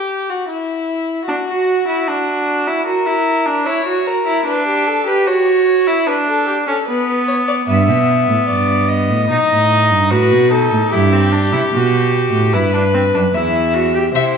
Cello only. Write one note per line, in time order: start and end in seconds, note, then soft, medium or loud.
7.68 7.89 G2 loud
7.88 8.28 B2 medium
8.29 8.37 A2 medium
8.49 9.11 G2 medium
9.09 9.29 A2 medium
9.29 9.38 B2 medium
9.50 9.92 A2 medium
9.90 10.13 G2 medium
10.11 10.33 A2 medium
10.32 10.71 B2 medium
10.72 10.80 A2 medium
10.92 11.52 G2 loud
11.53 11.61 C3 medium
11.73 12.32 B2 medium
12.33 12.55 A2 medium
12.53 13.13 G2 medium
13.14 13.22 F#2 medium
13.34 14.13 E2 medium
14.15 14.37 C3 medium